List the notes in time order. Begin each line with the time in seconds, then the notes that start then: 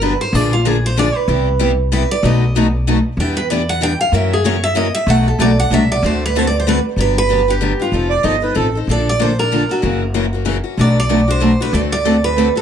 Already playing: G1
0.01 D3 F#3 B3 D4 G4 B4
0.21 C5
0.33 A#1 D3 F3 A#3 D4 G#4 D5
0.53 F4
0.65 D3 F3 A#3 D4 G#4
0.86 C5
0.97 D3 F3 A#3 D4 G#4 D5
1.16 B4
1.28 C2 C3 G3 B3 E4 G4
1.59 C3 G3 B3 E4 G4
1.92 C3 G3 B3 E4 G4 B4
2.11 D5
2.23 B1 B2 F#3 A3 D#4 F#4 B4 D#5
2.56 B2 F#3 A3 D#4 F#4 B4
2.87 B2 F#3 A3 D#4 F#4 B4
3.17 E2 E3 G3 B3 D4 E4 B4 G5
3.21 G4
3.37 B4
3.50 E3 G3 B3 D4 E4 G4 B4 D5
3.69 F#5
3.81 E3 G3 B3 D4 E4 G4 B4 G5
4.01 F5
4.12 F#2 C#3 E3 F#3 A#3 C#4 E4 F#4 A#4 E5
4.33 G#4
4.44 C#3 E3 F#3 A#3 C#4 E4 F#4 A#4 C#5
4.64 E5
4.75 C#3 E3 F#3 A#3 C#4 E4 F#4 A#4 D#5
4.95 E5
5.07 B1 B2 F#3 A3 D4 F#4 B4 F#5
5.28 A4
5.39 B1 B2 F#3 A3 D4 F#4 B4 D5
5.60 F#5
5.70 C2 B2 F#3 A3 D4 F#4 B4 E5
5.92 D5
6.03 D2 D3 A3 C4 F#4 A4 C5
6.26 B4
6.36 D3 A3 C4 F#4 A4 C5
6.47 D5
6.60 C5
6.67 D3 A3 C4 F#4 A4 B4
6.96 G1 D3 F#3 B3 D4 G4
7.01 B4
7.18 B4
7.29 D3 F#3 B3 D4 G4
7.48 B3 D4 G4
7.61 D3 F#3 B3 D4 G4
7.80 B3 D4 F4 G4
7.92 F1 F3 C4 D#4 A4
8.10 D5
8.23 G1 F3 C4 D#4 A4 D#5
8.42 C4 D#4 A4 B4
8.55 A1 F3 C4 D#4 A4
8.75 C4 D#4 A4
8.87 A#1 D3 F3 A#3 D4 A4 D5
9.09 D5
9.19 D3 F3 A#3 D4 A4 C5
9.39 A#3 D4 A4 A#4
9.52 D3 F3 A#3 D4 A4
9.69 A#3 D4 F#4 A4
9.82 F#1 C#3 E3 F#3 A#3 C#4 E4 F#4 A#4
10.14 C#3 E3 F#3 A#3 C#4 E4 F#4 A#4
10.33 A#3 C#4 F#4
10.45 C#3 E3 F#3 A#3 C#4 E4 F#4 A#4
10.64 A#3 C#4 F#4
10.77 B1 B2 F#3 A3 D4 F#4 B4 D5
11.00 D5
11.09 B2 F#3 A3 D4 F#4 B4
11.28 A3 D4 F#4 C5
11.40 B2 F#3 A3 D4 F#4 B4
11.60 A3 D4 F#4 B4
11.73 D2 D3 A3 C4 F#4 A4 D5
11.92 D5
12.05 D3 A3 C4 F#4 A4
12.24 C4 F#4 A4 B4
12.38 D3 A3 C4 F#4 A4
12.55 C4 F#4 A4